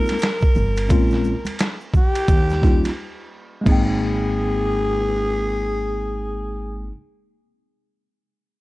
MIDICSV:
0, 0, Header, 1, 5, 480
1, 0, Start_track
1, 0, Key_signature, -4, "major"
1, 0, Tempo, 689655
1, 628, Time_signature, 4, 2, 24, 8
1, 5988, End_track
2, 0, Start_track
2, 0, Title_t, "Alto saxophone"
2, 0, Program_c, 0, 65
2, 0, Note_on_c, 0, 70, 112
2, 1148, Note_off_c, 0, 70, 0
2, 1369, Note_on_c, 0, 67, 97
2, 2051, Note_off_c, 0, 67, 0
2, 2560, Note_on_c, 0, 68, 101
2, 4806, Note_off_c, 0, 68, 0
2, 5988, End_track
3, 0, Start_track
3, 0, Title_t, "Tine electric piano"
3, 0, Program_c, 1, 4
3, 0, Note_on_c, 1, 56, 87
3, 0, Note_on_c, 1, 58, 76
3, 0, Note_on_c, 1, 60, 85
3, 0, Note_on_c, 1, 63, 80
3, 0, Note_on_c, 1, 65, 86
3, 109, Note_off_c, 1, 56, 0
3, 111, Note_off_c, 1, 58, 0
3, 113, Note_off_c, 1, 60, 0
3, 116, Note_off_c, 1, 63, 0
3, 118, Note_off_c, 1, 65, 0
3, 618, Note_on_c, 1, 56, 69
3, 622, Note_on_c, 1, 58, 75
3, 627, Note_on_c, 1, 60, 66
3, 634, Note_on_c, 1, 61, 68
3, 639, Note_on_c, 1, 65, 83
3, 923, Note_off_c, 1, 56, 0
3, 924, Note_off_c, 1, 58, 0
3, 927, Note_off_c, 1, 60, 0
3, 930, Note_off_c, 1, 61, 0
3, 933, Note_off_c, 1, 65, 0
3, 1821, Note_on_c, 1, 55, 57
3, 1824, Note_on_c, 1, 58, 54
3, 1834, Note_on_c, 1, 61, 48
3, 1838, Note_on_c, 1, 63, 54
3, 1843, Note_on_c, 1, 65, 74
3, 2009, Note_off_c, 1, 55, 0
3, 2011, Note_off_c, 1, 58, 0
3, 2016, Note_off_c, 1, 61, 0
3, 2018, Note_off_c, 1, 63, 0
3, 2020, Note_off_c, 1, 65, 0
3, 2515, Note_on_c, 1, 56, 74
3, 2531, Note_on_c, 1, 58, 72
3, 2553, Note_on_c, 1, 60, 69
3, 2569, Note_on_c, 1, 63, 72
3, 2588, Note_on_c, 1, 79, 77
3, 4760, Note_off_c, 1, 56, 0
3, 4777, Note_off_c, 1, 58, 0
3, 4798, Note_off_c, 1, 60, 0
3, 4814, Note_off_c, 1, 63, 0
3, 4834, Note_off_c, 1, 79, 0
3, 5988, End_track
4, 0, Start_track
4, 0, Title_t, "Upright bass"
4, 0, Program_c, 2, 32
4, 389, Note_on_c, 2, 31, 89
4, 629, Note_off_c, 2, 31, 0
4, 629, Note_on_c, 2, 34, 92
4, 923, Note_off_c, 2, 34, 0
4, 1589, Note_on_c, 2, 39, 103
4, 1952, Note_off_c, 2, 39, 0
4, 2548, Note_on_c, 2, 32, 88
4, 4793, Note_off_c, 2, 32, 0
4, 5988, End_track
5, 0, Start_track
5, 0, Title_t, "Drums"
5, 40, Note_on_c, 9, 63, 56
5, 40, Note_on_c, 9, 82, 41
5, 63, Note_on_c, 9, 51, 58
5, 76, Note_on_c, 9, 38, 33
5, 110, Note_off_c, 9, 63, 0
5, 110, Note_off_c, 9, 82, 0
5, 131, Note_on_c, 9, 82, 69
5, 133, Note_off_c, 9, 51, 0
5, 146, Note_off_c, 9, 38, 0
5, 153, Note_on_c, 9, 44, 60
5, 153, Note_on_c, 9, 51, 74
5, 163, Note_on_c, 9, 38, 104
5, 201, Note_off_c, 9, 82, 0
5, 223, Note_off_c, 9, 44, 0
5, 223, Note_off_c, 9, 51, 0
5, 232, Note_off_c, 9, 38, 0
5, 285, Note_on_c, 9, 63, 51
5, 285, Note_on_c, 9, 82, 38
5, 297, Note_on_c, 9, 36, 95
5, 354, Note_off_c, 9, 63, 0
5, 354, Note_off_c, 9, 82, 0
5, 366, Note_off_c, 9, 36, 0
5, 383, Note_on_c, 9, 64, 54
5, 383, Note_on_c, 9, 82, 40
5, 452, Note_off_c, 9, 64, 0
5, 452, Note_off_c, 9, 82, 0
5, 530, Note_on_c, 9, 82, 43
5, 539, Note_on_c, 9, 51, 61
5, 599, Note_off_c, 9, 82, 0
5, 609, Note_off_c, 9, 51, 0
5, 621, Note_on_c, 9, 82, 74
5, 628, Note_on_c, 9, 36, 109
5, 629, Note_on_c, 9, 51, 76
5, 691, Note_off_c, 9, 82, 0
5, 698, Note_off_c, 9, 36, 0
5, 699, Note_off_c, 9, 51, 0
5, 769, Note_on_c, 9, 82, 46
5, 786, Note_on_c, 9, 38, 33
5, 839, Note_off_c, 9, 82, 0
5, 855, Note_off_c, 9, 38, 0
5, 865, Note_on_c, 9, 63, 50
5, 865, Note_on_c, 9, 82, 49
5, 935, Note_off_c, 9, 63, 0
5, 935, Note_off_c, 9, 82, 0
5, 1009, Note_on_c, 9, 63, 73
5, 1009, Note_on_c, 9, 82, 54
5, 1020, Note_on_c, 9, 51, 62
5, 1079, Note_off_c, 9, 63, 0
5, 1079, Note_off_c, 9, 82, 0
5, 1090, Note_off_c, 9, 51, 0
5, 1107, Note_on_c, 9, 44, 55
5, 1107, Note_on_c, 9, 51, 79
5, 1110, Note_on_c, 9, 82, 76
5, 1118, Note_on_c, 9, 38, 127
5, 1176, Note_off_c, 9, 44, 0
5, 1176, Note_off_c, 9, 51, 0
5, 1180, Note_off_c, 9, 82, 0
5, 1187, Note_off_c, 9, 38, 0
5, 1257, Note_on_c, 9, 82, 43
5, 1326, Note_off_c, 9, 82, 0
5, 1347, Note_on_c, 9, 36, 90
5, 1349, Note_on_c, 9, 64, 60
5, 1349, Note_on_c, 9, 82, 43
5, 1417, Note_off_c, 9, 36, 0
5, 1419, Note_off_c, 9, 64, 0
5, 1419, Note_off_c, 9, 82, 0
5, 1499, Note_on_c, 9, 51, 62
5, 1500, Note_on_c, 9, 82, 45
5, 1569, Note_off_c, 9, 51, 0
5, 1570, Note_off_c, 9, 82, 0
5, 1588, Note_on_c, 9, 63, 43
5, 1588, Note_on_c, 9, 82, 67
5, 1589, Note_on_c, 9, 36, 88
5, 1589, Note_on_c, 9, 51, 64
5, 1657, Note_off_c, 9, 63, 0
5, 1657, Note_off_c, 9, 82, 0
5, 1658, Note_off_c, 9, 51, 0
5, 1659, Note_off_c, 9, 36, 0
5, 1737, Note_on_c, 9, 82, 47
5, 1751, Note_on_c, 9, 38, 32
5, 1807, Note_off_c, 9, 82, 0
5, 1821, Note_off_c, 9, 38, 0
5, 1832, Note_on_c, 9, 36, 94
5, 1832, Note_on_c, 9, 82, 36
5, 1843, Note_on_c, 9, 38, 34
5, 1901, Note_off_c, 9, 36, 0
5, 1902, Note_off_c, 9, 82, 0
5, 1912, Note_off_c, 9, 38, 0
5, 1975, Note_on_c, 9, 63, 49
5, 1975, Note_on_c, 9, 82, 37
5, 1985, Note_on_c, 9, 51, 55
5, 1998, Note_on_c, 9, 38, 32
5, 2044, Note_off_c, 9, 63, 0
5, 2044, Note_off_c, 9, 82, 0
5, 2054, Note_off_c, 9, 51, 0
5, 2068, Note_off_c, 9, 38, 0
5, 2545, Note_on_c, 9, 63, 83
5, 2550, Note_on_c, 9, 36, 97
5, 2552, Note_on_c, 9, 49, 79
5, 2615, Note_off_c, 9, 63, 0
5, 2619, Note_off_c, 9, 36, 0
5, 2622, Note_off_c, 9, 49, 0
5, 5988, End_track
0, 0, End_of_file